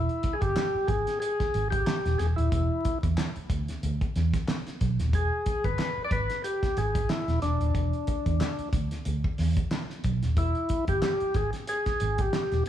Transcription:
0.00 0.35 E4 medium
0.09 closed hi-hat soft
0.23 kick medium
0.23 closed hi-hat medium
0.33 0.42 G#4 medium
0.41 0.54 G1 medium
0.41 0.90 G4 loud
0.41 kick medium
0.41 closed hi-hat soft
0.56 snare loud
0.56 clap loud
0.75 muted fingered electric bass stroke soft
0.88 1.04 G#1 loud
0.88 1.19 G#4 loud
0.88 kick loud
0.88 closed hi-hat medium
1.07 snare soft
1.07 closed hi-hat medium
1.20 1.68 G#4 loud
1.20 closed hi-hat medium
1.40 kick medium
1.40 snare soft
1.40 closed hi-hat soft
1.54 1.82 G#1 medium
1.54 closed hi-hat medium
1.71 2.20 G4 medium
1.71 kick medium
1.71 closed hi-hat medium
1.87 snare loud
1.87 clap medium
2.05 2.17 E1 medium
2.05 snare soft
2.05 closed hi-hat soft
2.18 2.35 E1 medium
2.18 2.27 G#4 medium
2.18 snare soft
2.18 closed hi-hat medium
2.36 2.50 D#1 medium
2.36 2.98 E4 medium
2.36 closed hi-hat soft
2.52 2.68 E1 loud
2.52 kick loud
2.52 closed hi-hat loud
2.85 kick medium
2.85 closed hi-hat medium
3.03 3.15 E2 medium
3.03 kick loud
3.03 closed hi-hat medium
3.18 snare loud
3.18 clap loud
3.36 muted fingered electric bass stroke soft
3.36 closed hi-hat soft
3.50 3.65 D2 medium
3.50 kick loud
3.50 closed hi-hat medium
3.68 snare soft
3.68 closed hi-hat medium
3.83 3.99 D2 loud
3.83 closed hi-hat medium
4.01 kick medium
4.01 closed hi-hat soft
4.16 4.31 E2 medium
4.16 snare soft
4.16 closed hi-hat medium
4.34 kick loud
4.34 snare soft
4.34 closed hi-hat medium
4.48 snare loud
4.48 clap medium
4.67 snare soft
4.67 closed hi-hat soft
4.81 4.96 B1 medium
4.81 kick medium
4.81 closed hi-hat medium
4.99 5.13 D#1 loud
4.99 snare soft
4.99 closed hi-hat soft
5.13 5.29 E1 medium
5.13 5.67 G#4 medium
5.13 kick loud
5.13 closed hi-hat medium
5.46 kick medium
5.46 closed hi-hat medium
5.64 5.76 G1 medium
5.64 6.03 B4 loud
5.64 kick loud
5.64 closed hi-hat soft
5.79 snare loud
5.79 clap loud
5.97 muted fingered electric bass stroke soft
6.05 6.11 D5 medium
6.11 6.27 G#1 medium
6.11 6.42 B4 loud
6.11 kick loud
6.11 closed hi-hat medium
6.30 snare soft
6.30 closed hi-hat medium
6.44 6.78 G4 loud
6.44 closed hi-hat loud
6.63 kick medium
6.63 snare soft
6.63 closed hi-hat soft
6.77 7.05 G#1 medium
6.77 7.11 G#4 medium
6.77 closed hi-hat medium
6.95 kick loud
6.95 closed hi-hat medium
7.09 7.40 E4 medium
7.09 snare loud
7.09 clap medium
7.28 7.40 E1 medium
7.28 snare soft
7.28 closed hi-hat soft
7.42 7.58 E1 loud
7.42 8.69 D4 medium
7.42 snare soft
7.42 closed hi-hat medium
7.60 7.72 D#1 medium
7.60 closed hi-hat soft
7.75 7.90 E1 loud
7.75 kick loud
7.75 closed hi-hat medium
7.93 closed hi-hat soft
8.07 kick medium
8.07 closed hi-hat medium
8.26 8.38 E2 medium
8.26 kick medium
8.26 closed hi-hat soft
8.41 snare loud
8.41 clap medium
8.59 muted fingered electric bass stroke soft
8.59 closed hi-hat soft
8.73 8.88 D2 medium
8.73 kick loud
8.73 closed hi-hat medium
8.91 snare soft
8.91 closed hi-hat soft
9.05 9.21 D2 loud
9.05 closed hi-hat medium
9.24 kick medium
9.38 9.54 E2 medium
9.38 snare soft
9.38 open hi-hat medium
9.57 kick loud
9.57 closed hi-hat medium
9.71 snare loud
9.71 clap medium
9.90 snare soft
10.04 10.20 B1 medium
10.04 kick medium
10.04 closed hi-hat medium
10.23 10.37 D#1 medium
10.23 snare soft
10.23 closed hi-hat soft
10.37 10.52 E1 loud
10.37 10.85 E4 medium
10.37 kick loud
10.37 closed hi-hat medium
10.55 closed hi-hat soft
10.69 kick medium
10.69 closed hi-hat medium
10.88 11.00 G1 medium
10.88 11.37 G4 loud
10.88 kick medium
10.88 closed hi-hat soft
11.02 snare loud
11.02 clap medium
11.20 muted fingered electric bass stroke soft
11.20 closed hi-hat soft
11.34 11.50 G#1 medium
11.34 11.51 G#4 loud
11.34 kick loud
11.34 closed hi-hat medium
11.53 snare soft
11.53 closed hi-hat soft
11.67 12.21 G#4 loud
11.67 closed hi-hat loud
11.86 kick medium
11.86 snare soft
11.86 closed hi-hat soft
12.00 12.29 G#1 medium
12.00 closed hi-hat medium
12.18 12.64 G4 loud
12.18 kick medium
12.18 closed hi-hat medium
12.33 snare loud
12.33 clap medium
12.52 12.64 E1 medium
12.52 snare soft
12.52 closed hi-hat soft

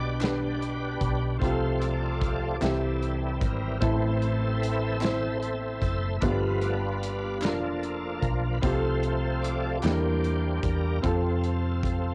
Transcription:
0.00 0.98 B1 medium
0.00 0.18 B2 medium
0.00 0.19 D4 medium
0.00 0.21 D4 medium
0.00 0.23 G4 medium
0.00 0.60 G4 medium
0.00 0.24 B4 medium
0.00 0.58 B4 medium
0.00 0.64 D5 loud
0.20 0.57 G3 soft
0.20 0.57 B3 soft
0.20 0.57 D4 soft
0.20 1.23 D4 medium
0.20 1.24 G4 medium
0.20 1.24 B4 medium
0.20 clap medium
0.20 closed hi-hat medium
0.24 snare loud
0.60 1.37 D4 medium
0.60 1.38 G4 medium
0.60 1.37 B4 loud
0.60 closed hi-hat soft
1.01 1.38 B1 medium
1.01 kick medium
1.01 closed hi-hat medium
1.38 2.58 C2 medium
1.38 2.56 F3 medium
1.38 2.57 A3 soft
1.38 2.57 C4 medium
1.38 2.43 C4 medium
1.38 1.78 F4 medium
1.38 1.78 A4 medium
1.38 1.82 C5 medium
1.38 kick loud
1.38 closed hi-hat medium
1.43 2.59 C3 medium
1.43 2.44 F4 medium
1.43 1.50 G4 medium
1.51 2.48 A4 medium
1.79 2.57 F4 medium
1.79 2.57 A4 medium
1.79 2.63 D5 medium
1.79 closed hi-hat soft
2.21 kick medium
2.21 closed hi-hat medium
2.61 3.38 C2 medium
2.61 3.79 C3 soft
2.61 3.78 E3 soft
2.61 3.78 G3 soft
2.61 3.63 C4 medium
2.61 3.78 C4 medium
2.61 3.78 E4 medium
2.61 3.64 E4 medium
2.61 3.64 G4 medium
2.61 3.38 A4 medium
2.61 clap medium
2.61 closed hi-hat medium
2.65 snare loud
3.03 closed hi-hat soft
3.40 3.79 G#1 medium
3.40 3.82 A#4 medium
3.40 kick medium
3.40 closed hi-hat medium
3.79 5.78 A1 medium
3.79 4.98 A2 medium
3.79 4.97 E3 medium
3.79 4.97 A3 soft
3.79 4.97 C4 medium
3.79 4.83 C4 medium
3.79 4.98 E4 medium
3.79 4.83 E4 medium
3.79 4.58 A4 medium
3.79 4.84 A4 medium
3.79 4.58 C5 medium
3.79 kick loud
3.79 closed hi-hat medium
4.22 closed hi-hat soft
4.59 5.38 A4 medium
4.59 5.39 C5 medium
4.59 5.37 E5 loud
4.63 closed hi-hat medium
5.00 6.03 C4 medium
5.00 6.04 E4 medium
5.00 6.04 C5 medium
5.00 clap medium
5.00 closed hi-hat medium
5.05 snare loud
5.39 6.17 A4 medium
5.39 6.17 C5 medium
5.39 6.24 E5 loud
5.39 closed hi-hat soft
5.82 6.19 F#1 medium
5.82 kick medium
5.82 closed hi-hat medium
6.20 7.42 G1 medium
6.20 7.39 G2 medium
6.20 6.75 F3 medium
6.20 7.24 G3 medium
6.20 6.75 A3 soft
6.20 6.76 B3 medium
6.20 7.24 B3 medium
6.20 7.24 D4 medium
6.20 6.60 F4 medium
6.20 6.61 B4 medium
6.20 6.39 D5 loud
6.20 kick loud
6.20 closed hi-hat medium
6.24 7.25 F4 medium
6.24 6.30 A4 medium
6.32 7.28 B4 medium
6.61 7.38 D4 medium
6.61 7.38 F4 medium
6.61 7.45 B4 loud
6.61 closed hi-hat soft
7.03 closed hi-hat medium
7.41 8.19 F1 medium
7.41 8.58 F3 soft
7.41 8.58 A#3 soft
7.41 8.58 D4 medium
7.41 8.44 D4 medium
7.41 8.59 F4 medium
7.41 8.44 F4 soft
7.41 8.25 A4 medium
7.41 clap medium
7.41 closed hi-hat medium
7.45 8.45 A#4 medium
7.45 snare loud
7.83 closed hi-hat soft
8.21 8.59 B1 medium
8.21 8.36 A#4 medium
8.21 kick medium
8.21 closed hi-hat medium
8.53 8.61 B4 medium
8.61 9.79 C2 medium
8.61 9.79 C3 medium
8.61 9.78 F3 medium
8.61 9.78 A3 soft
8.61 9.78 C4 medium
8.61 9.64 C4 medium
8.61 9.79 F4 medium
8.61 9.64 F4 medium
8.61 9.78 A4 medium
8.61 9.45 C5 medium
8.61 kick loud
8.61 closed hi-hat medium
8.65 8.70 G4 medium
8.72 9.68 A4 medium
9.03 closed hi-hat soft
9.42 9.84 D5 medium
9.42 closed hi-hat medium
9.82 10.59 E2 loud
9.82 11.00 E3 medium
9.82 10.99 G3 soft
9.82 10.84 G3 medium
9.82 10.99 A#3 soft
9.82 10.84 A#3 medium
9.82 10.99 D4 medium
9.82 10.85 D4 medium
9.82 10.85 E4 soft
9.82 10.99 G4 medium
9.82 9.91 A4 soft
9.82 10.66 C5 medium
9.82 snare loud
9.82 clap medium
9.82 closed hi-hat medium
9.92 10.89 A#4 medium
10.24 closed hi-hat soft
10.63 11.00 E2 medium
10.63 11.04 A#4 medium
10.63 kick medium
10.63 closed hi-hat medium
11.01 12.14 F2 medium
11.01 12.14 C3 medium
11.01 12.14 C4 medium
11.01 12.04 C4 medium
11.01 12.14 F4 medium
11.01 12.05 F4 medium
11.01 12.14 A4 medium
11.01 kick loud
11.01 closed hi-hat medium
11.06 12.05 A4 medium
11.43 closed hi-hat soft
11.83 kick medium
11.83 closed hi-hat medium

